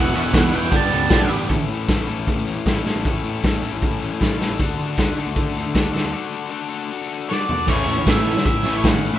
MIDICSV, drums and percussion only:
0, 0, Header, 1, 2, 480
1, 0, Start_track
1, 0, Tempo, 386349
1, 1869, Time_signature, 4, 2, 24, 8
1, 11415, End_track
2, 0, Start_track
2, 0, Title_t, "Drums"
2, 70, Note_on_c, 9, 42, 45
2, 180, Note_off_c, 9, 42, 0
2, 180, Note_on_c, 9, 42, 73
2, 298, Note_off_c, 9, 42, 0
2, 298, Note_on_c, 9, 42, 49
2, 418, Note_off_c, 9, 42, 0
2, 418, Note_on_c, 9, 36, 114
2, 418, Note_on_c, 9, 42, 87
2, 429, Note_on_c, 9, 38, 119
2, 542, Note_off_c, 9, 36, 0
2, 542, Note_off_c, 9, 42, 0
2, 543, Note_on_c, 9, 42, 47
2, 553, Note_off_c, 9, 38, 0
2, 651, Note_off_c, 9, 42, 0
2, 651, Note_on_c, 9, 42, 71
2, 771, Note_off_c, 9, 42, 0
2, 771, Note_on_c, 9, 42, 38
2, 890, Note_off_c, 9, 42, 0
2, 890, Note_on_c, 9, 42, 94
2, 892, Note_on_c, 9, 36, 109
2, 1014, Note_off_c, 9, 42, 0
2, 1014, Note_on_c, 9, 42, 48
2, 1016, Note_off_c, 9, 36, 0
2, 1127, Note_off_c, 9, 42, 0
2, 1127, Note_on_c, 9, 42, 79
2, 1249, Note_off_c, 9, 42, 0
2, 1249, Note_on_c, 9, 42, 46
2, 1363, Note_off_c, 9, 42, 0
2, 1363, Note_on_c, 9, 42, 100
2, 1372, Note_on_c, 9, 36, 119
2, 1374, Note_on_c, 9, 38, 116
2, 1487, Note_off_c, 9, 42, 0
2, 1496, Note_off_c, 9, 36, 0
2, 1498, Note_off_c, 9, 38, 0
2, 1616, Note_on_c, 9, 42, 81
2, 1740, Note_off_c, 9, 42, 0
2, 1745, Note_on_c, 9, 42, 45
2, 1862, Note_on_c, 9, 36, 93
2, 1869, Note_off_c, 9, 42, 0
2, 1869, Note_on_c, 9, 42, 71
2, 1986, Note_off_c, 9, 36, 0
2, 1993, Note_off_c, 9, 42, 0
2, 2109, Note_on_c, 9, 42, 54
2, 2234, Note_off_c, 9, 42, 0
2, 2338, Note_on_c, 9, 42, 74
2, 2343, Note_on_c, 9, 36, 101
2, 2349, Note_on_c, 9, 38, 94
2, 2462, Note_off_c, 9, 42, 0
2, 2467, Note_off_c, 9, 36, 0
2, 2473, Note_off_c, 9, 38, 0
2, 2578, Note_on_c, 9, 42, 55
2, 2702, Note_off_c, 9, 42, 0
2, 2822, Note_on_c, 9, 42, 75
2, 2825, Note_on_c, 9, 36, 90
2, 2946, Note_off_c, 9, 42, 0
2, 2949, Note_off_c, 9, 36, 0
2, 3069, Note_on_c, 9, 42, 56
2, 3193, Note_off_c, 9, 42, 0
2, 3305, Note_on_c, 9, 36, 90
2, 3307, Note_on_c, 9, 42, 75
2, 3318, Note_on_c, 9, 38, 96
2, 3429, Note_off_c, 9, 36, 0
2, 3431, Note_off_c, 9, 42, 0
2, 3442, Note_off_c, 9, 38, 0
2, 3544, Note_on_c, 9, 42, 61
2, 3555, Note_on_c, 9, 38, 68
2, 3668, Note_off_c, 9, 42, 0
2, 3680, Note_off_c, 9, 38, 0
2, 3792, Note_on_c, 9, 36, 103
2, 3794, Note_on_c, 9, 42, 70
2, 3916, Note_off_c, 9, 36, 0
2, 3919, Note_off_c, 9, 42, 0
2, 4033, Note_on_c, 9, 42, 48
2, 4158, Note_off_c, 9, 42, 0
2, 4268, Note_on_c, 9, 42, 71
2, 4271, Note_on_c, 9, 36, 101
2, 4279, Note_on_c, 9, 38, 96
2, 4392, Note_off_c, 9, 42, 0
2, 4396, Note_off_c, 9, 36, 0
2, 4404, Note_off_c, 9, 38, 0
2, 4512, Note_on_c, 9, 42, 53
2, 4636, Note_off_c, 9, 42, 0
2, 4745, Note_on_c, 9, 42, 69
2, 4750, Note_on_c, 9, 36, 102
2, 4869, Note_off_c, 9, 42, 0
2, 4875, Note_off_c, 9, 36, 0
2, 4995, Note_on_c, 9, 42, 58
2, 5119, Note_off_c, 9, 42, 0
2, 5232, Note_on_c, 9, 36, 98
2, 5237, Note_on_c, 9, 42, 78
2, 5248, Note_on_c, 9, 38, 96
2, 5357, Note_off_c, 9, 36, 0
2, 5361, Note_off_c, 9, 42, 0
2, 5372, Note_off_c, 9, 38, 0
2, 5472, Note_on_c, 9, 42, 60
2, 5483, Note_on_c, 9, 38, 74
2, 5596, Note_off_c, 9, 42, 0
2, 5607, Note_off_c, 9, 38, 0
2, 5710, Note_on_c, 9, 36, 89
2, 5711, Note_on_c, 9, 42, 76
2, 5834, Note_off_c, 9, 36, 0
2, 5836, Note_off_c, 9, 42, 0
2, 5956, Note_on_c, 9, 42, 60
2, 6080, Note_off_c, 9, 42, 0
2, 6185, Note_on_c, 9, 36, 96
2, 6185, Note_on_c, 9, 42, 80
2, 6196, Note_on_c, 9, 38, 96
2, 6309, Note_off_c, 9, 42, 0
2, 6310, Note_off_c, 9, 36, 0
2, 6320, Note_off_c, 9, 38, 0
2, 6420, Note_on_c, 9, 42, 62
2, 6545, Note_off_c, 9, 42, 0
2, 6658, Note_on_c, 9, 42, 79
2, 6662, Note_on_c, 9, 36, 96
2, 6782, Note_off_c, 9, 42, 0
2, 6786, Note_off_c, 9, 36, 0
2, 6893, Note_on_c, 9, 42, 63
2, 7017, Note_off_c, 9, 42, 0
2, 7138, Note_on_c, 9, 42, 85
2, 7141, Note_on_c, 9, 36, 88
2, 7149, Note_on_c, 9, 38, 97
2, 7262, Note_off_c, 9, 42, 0
2, 7265, Note_off_c, 9, 36, 0
2, 7273, Note_off_c, 9, 38, 0
2, 7395, Note_on_c, 9, 42, 58
2, 7406, Note_on_c, 9, 38, 78
2, 7519, Note_off_c, 9, 42, 0
2, 7530, Note_off_c, 9, 38, 0
2, 9081, Note_on_c, 9, 38, 50
2, 9206, Note_off_c, 9, 38, 0
2, 9308, Note_on_c, 9, 43, 78
2, 9432, Note_off_c, 9, 43, 0
2, 9542, Note_on_c, 9, 36, 100
2, 9543, Note_on_c, 9, 49, 103
2, 9666, Note_off_c, 9, 36, 0
2, 9667, Note_off_c, 9, 49, 0
2, 9792, Note_on_c, 9, 42, 61
2, 9916, Note_off_c, 9, 42, 0
2, 10024, Note_on_c, 9, 36, 97
2, 10025, Note_on_c, 9, 42, 85
2, 10036, Note_on_c, 9, 38, 110
2, 10148, Note_off_c, 9, 36, 0
2, 10149, Note_off_c, 9, 42, 0
2, 10160, Note_off_c, 9, 38, 0
2, 10265, Note_on_c, 9, 42, 67
2, 10389, Note_off_c, 9, 42, 0
2, 10401, Note_on_c, 9, 38, 69
2, 10504, Note_on_c, 9, 36, 103
2, 10509, Note_on_c, 9, 42, 87
2, 10525, Note_off_c, 9, 38, 0
2, 10628, Note_off_c, 9, 36, 0
2, 10633, Note_off_c, 9, 42, 0
2, 10746, Note_on_c, 9, 42, 71
2, 10870, Note_off_c, 9, 42, 0
2, 10982, Note_on_c, 9, 42, 86
2, 10984, Note_on_c, 9, 36, 101
2, 10994, Note_on_c, 9, 38, 107
2, 11107, Note_off_c, 9, 42, 0
2, 11108, Note_off_c, 9, 36, 0
2, 11118, Note_off_c, 9, 38, 0
2, 11219, Note_on_c, 9, 42, 67
2, 11343, Note_off_c, 9, 42, 0
2, 11415, End_track
0, 0, End_of_file